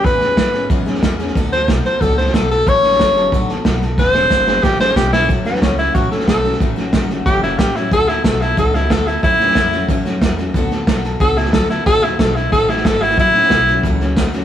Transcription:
<<
  \new Staff \with { instrumentName = "Tenor saxophone" } { \time 4/4 \key a \major \tempo 4 = 183 b'2 r2 | r8 c''8 r8 c''8 a'8 c''8 a'8 a'8 | cis''2 r2 | c''2 g'8 c''8 g'8 e'8 |
r8 b8 cis'8 e'8 fis'8 a'8 a'4 | r2 g'8 e'8 g'8 e'8 | a'8 e'8 a'8 e'8 a'8 e'8 a'8 e'8 | e'2 r2 |
r2 a'8 e'8 a'8 e'8 | a'8 e'8 a'8 e'8 a'8 e'8 a'8 e'8 | e'2 r2 | }
  \new Staff \with { instrumentName = "Steel-string acoustic guitar" } { \time 4/4 \key a \major <e gis b cis' gis'>8 <b cis' gis'>8 <gis b gis'>8 <b cis' gis'>8 <e gis b cis' gis'>8 <b cis' gis'>8 <gis b cis' gis'>8 <b cis' gis'>8 | <d fis b fis' a'>8 <b fis' a'>8 <fis b fis' a'>8 <b fis' a'>8 <d fis b fis' a'>8 <b fis' a'>8 <fis b fis' a'>8 <b fis' a'>8 | <a, e fis a cis' a'>8 <fis a cis' a'>8 <fis a cis' a'>8 <fis a cis' a'>8 <d fis b fis' a'>8 <b fis' a'>8 <fis b fis' a'>8 <b fis' a'>8 | <e gis b cis' gis'>8 <b cis' gis'>8 <gis b cis' gis'>8 <b cis' gis'>8 <e gis b cis' gis'>8 <b cis' gis'>8 <gis b cis' gis'>8 <b cis' gis'>8 |
<a, e fis a cis' fis'>8 <fis a cis' fis'>8 <fis a cis' fis'>8 <fis a cis' fis'>8 <a, e fis a cis' fis'>8 <fis a cis' fis'>8 <fis a cis' fis'>8 <fis a cis' fis'>8 | <a, e fis a cis' fis'>8 <fis a cis' fis'>8 <fis a cis' fis'>8 <fis a cis' fis'>8 <a, e fis a cis' fis'>8 <fis a cis' fis'>8 <fis a cis' fis'>8 <fis a cis' fis'>8 | <d fis b fis' a'>8 <b fis' a'>8 <fis b fis' a'>8 <b fis' a'>8 <d fis b fis' a'>8 <b fis' a'>8 <fis b fis' a'>8 <b fis' a'>8 | <a, e fis a cis' fis'>8 <fis a cis' fis'>8 <fis a cis' fis'>8 <fis a cis' fis'>8 <a, e fis a cis' fis'>8 <fis a cis' fis'>8 <fis a cis' fis'>8 <fis a cis' fis'>8 |
<d fis b fis' a'>8 <b fis' a'>8 <fis b fis' a'>8 <b fis' a'>8 <d fis b fis' a'>8 <b fis' a'>8 <fis b fis' a'>8 <b fis' a'>8 | <dis a bis dis' fis'>8 <bis dis' fis'>8 <a bis dis' fis'>8 <bis dis' fis'>8 <dis a bis dis' fis'>8 <bis dis' fis'>8 <a bis dis' fis'>8 <bis dis' fis'>8 | <a, e fis a cis' fis'>8 <fis a cis' fis'>8 <fis a cis' fis'>8 <fis a cis' fis'>8 <a, e fis a cis' fis'>8 <fis a cis' fis'>8 <fis a cis' fis'>8 <fis a cis' fis'>8 | }
  \new Staff \with { instrumentName = "Upright bass" } { \clef bass \time 4/4 \key a \major e,4 gis,4 fis,4 e,4 | d,4 b,,8 r8 cis,4 b,,4 | a,,4 g,,4 a,,4 b,,4 | e,,4 fis,,4 gis,,4 b,,4 |
e,4 cis,4 a,,8 r8 b,,4 | a,,4 g,,4 fis,,4 a,,4 | d,4 b,,4 cis,4 d,4 | e,4 f,4 fis,4 e,4 |
d,4 b,,4 cis,4 d,4 | dis,4 b,,4 a,,4 gis,,4 | a,,4 b,,4 cis,4 d,4 | }
  \new DrumStaff \with { instrumentName = "Drums" } \drummode { \time 4/4 <bd sn>8 sn8 <hhp bd sn>8 sn8 <bd sn>8 sn16 sn16 <hhp bd sn>8 sn16 sn16 | <bd sn>8 sn8 <hhp bd sn>8 sn8 <bd sn>8 sn16 sn16 <hhp bd sn>8 sn8 | <bd sn>8 sn16 sn16 <hhp bd sn>8 sn8 <bd sn>8 sn8 <hhp bd sn>8 sn8 | <bd sn>8 sn8 <hhp bd sn>8 sn8 <bd sn>8 sn8 <hhp bd sn>8 sn8 |
<bd sn>8 sn16 sn16 <hhp bd sn>8 sn8 <bd sn>8 sn16 sn16 <hhp bd sn>8 sn16 sn16 | <bd sn>8 sn8 <hhp bd sn>8 sn8 <bd sn>8 sn8 <hhp bd sn>8 sn8 | <bd sn>8 sn8 <hhp bd sn>8 sn8 <bd sn>8 sn8 <hhp bd sn>8 sn8 | <bd sn>8 sn16 sn16 <hhp bd sn>8 sn8 <bd sn>8 sn8 <hhp bd sn>8 sn8 |
<bd sn>8 sn8 <hhp bd sn>8 sn8 <bd sn>8 sn16 sn16 <hhp bd sn>8 sn8 | <bd sn>8 sn8 <hhp bd sn>8 sn8 <bd sn>8 sn16 sn16 <hhp bd sn>8 sn16 sn16 | <bd sn>8 sn16 sn16 <hhp bd sn>8 sn8 <bd sn>8 sn8 <hhp bd sn>8 sn8 | }
>>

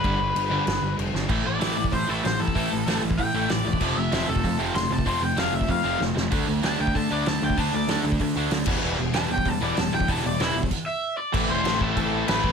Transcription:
<<
  \new Staff \with { instrumentName = "Overdriven electric guitar" } { \time 4/4 \key a \minor \tempo 4 = 191 b'2. r4 | r8 d''4. c''8 a'8 c''8 a'8~ | a'4. r8 g''8 g''8 d''8 d''8~ | d''8 e''4 a'4 r8 c'''8 a''8 |
c'''8 g''8 f''8 e''8 f''4 r4 | r4 a''8 g''8 a''8 d''8 a''8 g''8 | a''8 d''8 a'8 r2 r8 | r4 a''8 g''8 a''8 d''8 a''8 g''8 |
a''8 d''8 e'8 r4 e''4 d''8~ | d''8 c''4 a'8 a'4 b'4 | }
  \new Staff \with { instrumentName = "Distorted electric guitar" } { \clef bass \time 4/4 \key a \minor <g, d g b d'>8 r4 <g, d g b d'>8 r2 | <a, e a>8 <a, e>8 <a, e a>8 <a, e>8 <a, e>8 <a, e a>8 <a, e>8 <a, e>8 | <a, e a>8 <a, e>8 <a, e a>8 <a, e>8 <a, e>8 <a, e a>8 <a, e>8 <a, e>8 | <f a c'>8 <f a>8 <f a c'>8 <f a>8 <f a>8 <f a c'>8 <f a>8 <f a>8 |
<f a c'>8 <f a>8 <f a c'>8 <f a>8 <f a>8 <f a c'>8 <f a>8 <f a>8 | <d a d'>8 <d a>8 <d a d'>8 <d a>8 <d a>8 <d a d'>8 <d a>8 <d a>8 | <d a d'>8 <d a>8 <d a d'>8 <d a>8 <d a>8 <d a d'>8 <d a>8 <e g b>8 | <e g b>8 <e g>8 <e g b>8 <e g>8 <e g>8 <e g b>8 <e g>8 <e g>8 |
<e g b>8 <e g>8 <e g b>8 <e g>8 r2 | <a, e a c' e'>4 <a, e a c' e'>8 <a, e a c' e'>8 <a, e a c' e'>4 <a, e a c' e'>8 <a, e a c' e'>8 | }
  \new Staff \with { instrumentName = "Distorted electric guitar" } { \clef bass \time 4/4 \key a \minor <g, d g>8 r4 <g, d g>8 r2 | <a, e a>8 <a, e>8 <a, e a>8 <a, e>8 <a, e>8 <a, e a>8 <a, e>8 <a, e>8 | <a, e a>8 <a, e>8 <a, e a>8 <a, e>8 <a, e>8 <a, e a>8 <a, e>8 <a, e>8 | <f, c f>8 <f, c>8 <f, c f>8 <f, c>8 <f, c>8 <f, c f>8 <f, c>8 <f, c>8 |
<f, c f>8 <f, c>8 <f, c f>8 <f, c>8 <f, c>8 <f, c f>8 <f, c>8 <f, c>8 | <d a d'>8 <d a>8 <d a d'>8 <d a>8 <d a>8 <d a d'>8 <d a>8 <d a>8 | <d a d'>8 <d a>8 <d a d'>8 <d a>8 <d a>8 <d a d'>8 <d a>8 <e, b, e>8 | <e, b, e>8 <e, b,>8 <e, b, e>8 <e, b,>8 <e, b,>8 <e, b, e>8 <e, b,>8 <e, b,>8 |
<e, b, e>8 <e, b,>8 <e, b, e>8 <e, b,>8 r2 | <a, e a>4 <a, e a>8 <a, e a>8 <a, e a>4 <a, e a>8 <a, e a>8 | }
  \new Staff \with { instrumentName = "Distorted electric guitar" } { \clef bass \time 4/4 \key a \minor <g, d g>8 <g, d g>8 <g, d g>8 <g, d g>8 <g, d g>8 <g, d g>8 <g, d g>8 <g, d g>8 | <a, e a>4. <a, e a>2~ <a, e a>8 | <a, e a>4. <a, e a>2~ <a, e a>8 | <f, c f>4. <f, c f>2~ <f, c f>8 |
<f, c f>4. <f, c f>2~ <f, c f>8 | <d a d'>4. <d a d'>2~ <d a d'>8 | <d a d'>4. <d a d'>2 <e, b, e>8~ | <e, b, e>4 <e, b, e>2~ <e, b, e>8 <e, b, e>8~ |
<e, b, e>4 <e, b, e>4 r2 | <a, e a>1 | }
  \new Staff \with { instrumentName = "Picked electric bass" } { \clef bass \time 4/4 \key a \minor g,,8 g,,8 g,,4 g,,8 g,,8 f,,8 g,,8 | a,,8 a,,8 a,,8 a,,8 a,8 a,,8 a,,8 a,,8 | a,,8 a,,8 a,,8 a,,8 a,8 a,,8 a,,8 e,,8 | f,,8 f,,8 f,,8 f,,8 f,8 f,,8 f,,8 f,,8 |
f,,8 f,,8 f,,8 f,,8 f,8 f,,8 f,,8 f,,8 | d,8 d,8 d,8 d,8 d8 d,8 d,8 d,8 | d,8 d,8 d,8 d,8 d8 d,8 d,8 e,,8 | e,,8 e,,8 e,,8 e,,8 e,8 e,,8 e,,8 e,,8 |
e,,8 e,,8 e,,8 e,,8 r2 | a,,8 e,,8 a,,8 a,,8 a,,4 a,,8 a,,8 | }
  \new DrumStaff \with { instrumentName = "Drums" } \drummode { \time 4/4 <cymc bd>4 cymc4 <cymc sn>4 cymc8 sn8 | <cymc bd>4 <hho sn>8. bd16 <hho bd>4 <hho sn>8. bd16 | <hho bd>4 <hho sn>8. bd16 <hho bd>4 <hho sn>8. bd16 | <cymc bd>4 <hho sn>8. bd16 <hho bd>4 <hho sn>8. bd16 |
<hho bd>4 <hho sn>8. bd16 <hho bd>4 sn8 sn8 | <cymc hho bd>4 <hho sn>8. bd16 <hho bd>4 <hho sn>8. bd16 | <hho bd>4 <hho sn>8. bd16 <hho bd>4 <hho sn>8 <cymc bd>8 | r4 <hho sn>8. bd16 <hho bd>4 <hho sn>8. bd16 |
<hho bd>4 <hho sn>8. bd16 <cymc bd>4 r4 | <cymc bd>4 <cymc sn>8 bd8 <cymc bd>4 <cymc sn>8 bd8 | }
>>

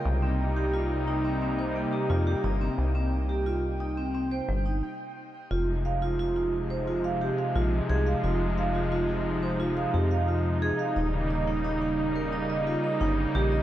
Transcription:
<<
  \new Staff \with { instrumentName = "Synth texture" } { \time 4/4 \key f \minor \tempo 4 = 88 g''1~ | g''2. r4 | r1 | r1 |
r1 | }
  \new Staff \with { instrumentName = "Vibraphone" } { \time 4/4 \key f \minor r16 c'16 r16 g'16 f'16 r16 ees'16 c'16 c'16 c''16 bes16 g'16 f'16 g'16 ees'16 c'16 | r16 c'16 r16 g'16 f'16 r16 ees'16 c'16 c'16 c''16 g16 ees'16 r4 | f'16 r16 f''16 f'16 f'16 f'16 r16 c''16 f'16 f''16 g'16 f''16 f'16 r16 aes'16 f''16 | f'16 r16 f''16 f'16 f'16 f'16 r16 c''16 f'16 f''16 g'16 f''16 f'16 r16 aes'16 f''16 |
ees'16 r16 ees''16 ees'16 ees'16 ees'16 r16 bes'16 ees'16 ees''16 f'16 ees''16 ees'16 r16 g'16 ees''16 | }
  \new Staff \with { instrumentName = "Analog synth pad" } { \clef bass \time 4/4 \key f \minor << { ees'1~ | ees'2. r4 | ees'1~ | ees'1~ |
ees'1 | } \\ { <c g bes>1~ | <c g bes>2. r4 | <c f aes>1~ | <c f aes>1 |
<des g bes>1 | } >> }
  \new Staff \with { instrumentName = "Acid bass" } { \clef bass \time 4/4 \key f \minor c,2~ c,8 r8 f,8 g,,8 | c,2~ c,8 g,,8 r4 | f,,2~ f,,8 r8 bes,,8 c,8 | f,,2~ f,,8 f,4 r8 |
ees,,2~ ees,,8 r8 g,,8 bes,,8 | }
>>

